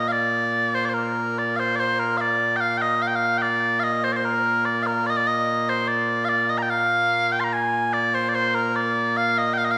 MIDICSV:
0, 0, Header, 1, 2, 480
1, 0, Start_track
1, 0, Key_signature, -2, "major"
1, 0, Tempo, 821918
1, 79, Time_signature, 2, 2, 24, 8
1, 5711, End_track
2, 0, Start_track
2, 0, Title_t, "Bagpipes"
2, 0, Program_c, 0, 109
2, 0, Note_on_c, 0, 46, 89
2, 0, Note_on_c, 0, 58, 89
2, 47, Note_on_c, 0, 77, 91
2, 70, Note_off_c, 0, 77, 0
2, 70, Note_on_c, 0, 74, 91
2, 437, Note_off_c, 0, 74, 0
2, 437, Note_on_c, 0, 72, 85
2, 497, Note_off_c, 0, 72, 0
2, 497, Note_on_c, 0, 74, 52
2, 521, Note_off_c, 0, 74, 0
2, 521, Note_on_c, 0, 72, 52
2, 548, Note_off_c, 0, 72, 0
2, 548, Note_on_c, 0, 70, 73
2, 808, Note_off_c, 0, 70, 0
2, 808, Note_on_c, 0, 74, 78
2, 912, Note_off_c, 0, 74, 0
2, 912, Note_on_c, 0, 77, 74
2, 931, Note_off_c, 0, 77, 0
2, 931, Note_on_c, 0, 72, 74
2, 1026, Note_off_c, 0, 72, 0
2, 1026, Note_on_c, 0, 74, 96
2, 1050, Note_off_c, 0, 74, 0
2, 1050, Note_on_c, 0, 72, 96
2, 1164, Note_off_c, 0, 72, 0
2, 1164, Note_on_c, 0, 70, 78
2, 1269, Note_off_c, 0, 70, 0
2, 1269, Note_on_c, 0, 77, 86
2, 1290, Note_off_c, 0, 77, 0
2, 1290, Note_on_c, 0, 74, 86
2, 1497, Note_off_c, 0, 74, 0
2, 1497, Note_on_c, 0, 79, 90
2, 1523, Note_off_c, 0, 79, 0
2, 1523, Note_on_c, 0, 77, 90
2, 1621, Note_off_c, 0, 77, 0
2, 1621, Note_on_c, 0, 79, 96
2, 1645, Note_off_c, 0, 79, 0
2, 1645, Note_on_c, 0, 75, 96
2, 1765, Note_off_c, 0, 75, 0
2, 1765, Note_on_c, 0, 77, 89
2, 1796, Note_off_c, 0, 77, 0
2, 1796, Note_on_c, 0, 79, 82
2, 1843, Note_off_c, 0, 79, 0
2, 1843, Note_on_c, 0, 77, 90
2, 1973, Note_off_c, 0, 77, 0
2, 1973, Note_on_c, 0, 79, 102
2, 1997, Note_off_c, 0, 79, 0
2, 1997, Note_on_c, 0, 74, 102
2, 2218, Note_off_c, 0, 74, 0
2, 2218, Note_on_c, 0, 77, 86
2, 2240, Note_off_c, 0, 77, 0
2, 2240, Note_on_c, 0, 75, 86
2, 2359, Note_off_c, 0, 75, 0
2, 2359, Note_on_c, 0, 72, 88
2, 2408, Note_off_c, 0, 72, 0
2, 2408, Note_on_c, 0, 74, 64
2, 2432, Note_off_c, 0, 74, 0
2, 2432, Note_on_c, 0, 72, 64
2, 2481, Note_off_c, 0, 72, 0
2, 2481, Note_on_c, 0, 70, 91
2, 2716, Note_off_c, 0, 70, 0
2, 2716, Note_on_c, 0, 74, 87
2, 2820, Note_off_c, 0, 74, 0
2, 2820, Note_on_c, 0, 77, 77
2, 2841, Note_off_c, 0, 77, 0
2, 2841, Note_on_c, 0, 70, 77
2, 2957, Note_off_c, 0, 70, 0
2, 2957, Note_on_c, 0, 74, 105
2, 2977, Note_off_c, 0, 74, 0
2, 2977, Note_on_c, 0, 75, 97
2, 3018, Note_off_c, 0, 75, 0
2, 3018, Note_on_c, 0, 74, 115
2, 3078, Note_off_c, 0, 74, 0
2, 3078, Note_on_c, 0, 75, 100
2, 3324, Note_off_c, 0, 75, 0
2, 3324, Note_on_c, 0, 72, 82
2, 3433, Note_off_c, 0, 72, 0
2, 3433, Note_on_c, 0, 74, 89
2, 3649, Note_on_c, 0, 77, 99
2, 3650, Note_off_c, 0, 74, 0
2, 3673, Note_off_c, 0, 77, 0
2, 3673, Note_on_c, 0, 74, 99
2, 3793, Note_off_c, 0, 74, 0
2, 3793, Note_on_c, 0, 75, 85
2, 3843, Note_off_c, 0, 75, 0
2, 3843, Note_on_c, 0, 82, 74
2, 3868, Note_off_c, 0, 82, 0
2, 3868, Note_on_c, 0, 79, 74
2, 3914, Note_off_c, 0, 79, 0
2, 3914, Note_on_c, 0, 77, 104
2, 4276, Note_off_c, 0, 77, 0
2, 4276, Note_on_c, 0, 79, 98
2, 4322, Note_off_c, 0, 79, 0
2, 4322, Note_on_c, 0, 84, 72
2, 4345, Note_off_c, 0, 84, 0
2, 4345, Note_on_c, 0, 82, 72
2, 4397, Note_off_c, 0, 82, 0
2, 4397, Note_on_c, 0, 80, 96
2, 4633, Note_off_c, 0, 80, 0
2, 4633, Note_on_c, 0, 74, 97
2, 4757, Note_off_c, 0, 74, 0
2, 4757, Note_on_c, 0, 72, 81
2, 4841, Note_off_c, 0, 72, 0
2, 4841, Note_on_c, 0, 74, 74
2, 4875, Note_off_c, 0, 74, 0
2, 4875, Note_on_c, 0, 72, 96
2, 4990, Note_off_c, 0, 72, 0
2, 4990, Note_on_c, 0, 70, 85
2, 5114, Note_off_c, 0, 70, 0
2, 5114, Note_on_c, 0, 74, 93
2, 5355, Note_off_c, 0, 74, 0
2, 5355, Note_on_c, 0, 77, 92
2, 5479, Note_off_c, 0, 77, 0
2, 5479, Note_on_c, 0, 75, 93
2, 5569, Note_off_c, 0, 75, 0
2, 5569, Note_on_c, 0, 79, 97
2, 5594, Note_off_c, 0, 79, 0
2, 5594, Note_on_c, 0, 77, 97
2, 5634, Note_off_c, 0, 77, 0
2, 5634, Note_on_c, 0, 75, 79
2, 5671, Note_off_c, 0, 75, 0
2, 5671, Note_on_c, 0, 77, 101
2, 5711, Note_off_c, 0, 46, 0
2, 5711, Note_off_c, 0, 58, 0
2, 5711, Note_off_c, 0, 77, 0
2, 5711, End_track
0, 0, End_of_file